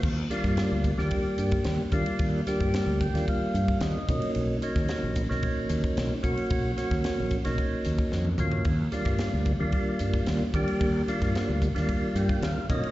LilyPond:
<<
  \new Staff \with { instrumentName = "Tonewheel organ" } { \time 4/4 \key ees \major \tempo 4 = 112 r1 | r4. g''8 f''4 ees''4 | r1 | r1 |
r1 | r2 r8 g''8 f''8 dis''8 | }
  \new Staff \with { instrumentName = "Tonewheel organ" } { \time 4/4 \key ees \major r8 <g bes d' f'>4 r16 <g bes d' g'>4. r16 <g bes d' f'>8~ | <g bes d' f'>8 <g bes d' g'>4 r16 <g bes d' f'>4. r16 <fis ais cis' dis'>8~ | <fis ais cis' dis'>8 <fis ais cis' dis'>4 r16 <fis ais cis' dis'>4. r16 <fis ais cis' fis'>8~ | <fis ais cis' fis'>8 <fis ais cis' fis'>4 r16 <fis ais cis' dis'>4. r16 <fis ais cis' f'>8 |
r8 <g bes d' f'>4 r16 <g bes d' f'>4. r16 <g bes d' g'>8~ | <g bes d' g'>8 <g bes d' f'>4 r16 <g bes d' f'>4. r16 <fis ais cis' dis'>8 | }
  \new Staff \with { instrumentName = "Fretless electric bass" } { \clef bass \time 4/4 \key ees \major ees,8 r16 g,16 r16 d,8 ees,16 r8 g,16 r16 ees,16 r16 ees,16 r16 | ees,8 r16 g,16 r16 d,8 ees,16 r8 g,16 r16 ees,16 r16 b,,16 r16 | b,,8 r16 dis,16 r16 ais,,8 b,,16 r8 dis,16 r16 b,,16 r16 b,,16 r16 | b,,8 r16 dis,16 r16 ais,,8 b,,16 r8 dis,16 r16 f,8 dis,8 |
ees,8 r16 g,16 r16 d,8 ees,16 r8 g,16 r16 ees,16 r16 ees,16 r16 | ees,8 r16 g,16 r16 d,8 ees,16 r8 g,16 r16 ees,16 r16 b,,16 r16 | }
  \new DrumStaff \with { instrumentName = "Drums" } \drummode { \time 4/4 <cymc bd>8 <hhp cymr sn>16 <bd cymr sn>16 <cymr sn>8 <hhp bd cymr>16 sn16 <bd cymr>8 <hhp cymr>16 <bd cymr>16 <cymr sn>8 <hhp bd cymr>16 cymr16 | <bd cymr>8 <hhp cymr sn>16 <bd cymr>16 <cymr sn>8 <hhp bd cymr>16 <cymr sn>16 <bd cymr>8 <hhp cymr>16 <bd cymr>16 <cymr sn>8 <hhp bd cymr>16 cymr16 | cymr8 <hhp cymr>16 <bd cymr sn>16 <cymr sn>8 <hhp bd cymr>16 sn16 <bd cymr>8 <hhp cymr>16 <bd cymr>16 <cymr sn>8 <hhp bd cymr>16 cymr16 | <bd cymr>8 <hhp cymr sn>16 <bd cymr sn>16 <cymr sn>8 <hhp bd cymr>16 <cymr sn>16 <bd cymr>8 <hhp cymr>16 <bd cymr>16 sn16 tommh16 <hhp toml>16 tomfh16 |
<bd cymr>8 <hhp cymr sn>16 <bd cymr sn>16 <cymr sn>8 <hhp bd cymr>8 <bd cymr>8 <hhp cymr>16 <bd cymr>16 <cymr sn>8 <hhp bd cymr>16 cymr16 | <bd cymr>8 <hhp cymr>16 <bd cymr sn>16 <cymr sn>8 <hhp bd cymr>16 <cymr sn>16 <bd cymr>8 <hhp cymr>16 <bd cymr>16 <cymr sn>8 <hhp bd cymr>16 cymr16 | }
>>